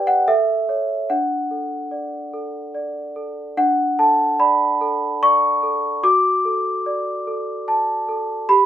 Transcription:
0.00 0.25 G4 medium
0.00 0.23 B4 soft
0.00 0.23 D5 medium
0.00 0.29 G5 medium
0.07 0.27 F#5 medium
0.28 0.68 A4 medium
0.28 1.10 E5 medium
0.69 1.06 A4 soft
0.69 1.06 C#5 soft
1.10 3.53 D4 soft
1.10 3.16 F#5 medium
1.51 2.17 A4 soft
1.91 2.58 D5 soft
2.33 2.99 A4 soft
2.75 3.41 D5 soft
3.16 3.57 A4 soft
3.57 6.00 D4 medium
3.57 3.99 F#5 medium
3.99 4.65 A4 soft
3.99 4.40 A5 medium
4.39 5.05 D5 soft
4.39 5.22 B5 medium
4.81 5.47 A4 soft
5.23 5.88 D5 soft
5.23 6.04 C#6 medium
5.63 6.04 A4 soft
6.03 8.46 F#4 medium
6.03 8.50 D6 medium
6.45 7.11 A4 soft
6.86 7.52 D5 soft
7.27 7.93 A4 soft
7.68 8.34 A5 medium
8.09 8.50 A4 soft
8.49 8.66 G4 medium
8.49 8.66 B5 medium

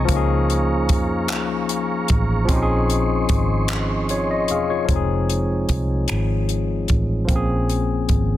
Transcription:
0.00 2.45 A#5 medium
0.00 4.85 C#6 medium
0.05 2.43 F3 medium
0.05 2.44 A#3 medium
0.05 4.84 G#4 medium
0.05 2.46 F5 medium
0.05 kick loud
0.05 closed hi-hat medium
0.10 0.90 C#2 medium
0.10 2.46 C#4 medium
0.10 2.47 D#4 medium
0.16 2.48 G#4 medium
0.50 closed hi-hat soft
0.89 1.30 F2 medium
0.89 kick medium
0.89 closed hi-hat medium
1.28 2.06 C#2 loud
1.28 clap loud
1.28 closed hi-hat medium
1.69 closed hi-hat soft
2.08 2.46 A1 medium
2.08 kick medium
2.08 closed hi-hat soft
2.45 4.83 F3 medium
2.45 4.84 C4 medium
2.45 kick loud
2.45 closed hi-hat medium
2.49 3.25 A#1 loud
2.49 4.86 C#4 medium
2.49 4.87 D#4 medium
2.49 4.86 D#5 medium
2.49 4.87 C6 medium
2.56 2.59 G4 medium
2.62 4.12 G#4 medium
2.90 closed hi-hat soft
3.29 4.51 G#1 medium
3.29 kick medium
3.29 closed hi-hat medium
3.68 clap loud
3.68 closed hi-hat medium
4.09 4.29 F4 soft
4.09 4.29 C#5 medium
4.09 closed hi-hat soft
4.31 4.49 D#5 medium
4.48 4.86 E1 medium
4.48 4.69 G#4 medium
4.48 4.69 F5 medium
4.48 closed hi-hat soft
4.70 5.08 F4 soft
4.70 5.07 C#5 medium
4.85 7.23 F3 medium
4.85 7.24 G#3 medium
4.85 kick medium
4.85 closed hi-hat medium
4.90 5.65 F1 medium
4.90 7.26 C4 medium
4.90 7.27 D#4 medium
4.96 7.28 G#4 medium
5.30 closed hi-hat soft
5.69 6.06 C2 medium
5.69 kick medium
5.69 closed hi-hat soft
6.08 6.86 G#1 medium
6.08 finger snap loud
6.08 closed hi-hat medium
6.49 closed hi-hat soft
6.88 7.26 A1 medium
6.88 kick medium
6.88 closed hi-hat soft
7.25 8.37 F3 medium
7.25 8.37 A#3 medium
7.29 8.05 A#1 loud
7.29 8.37 C4 medium
7.29 kick loud
7.29 closed hi-hat medium
7.33 8.37 C#4 medium
7.33 8.37 G#4 medium
7.69 closed hi-hat soft
8.09 8.37 G#1 medium
8.09 kick medium
8.09 closed hi-hat soft

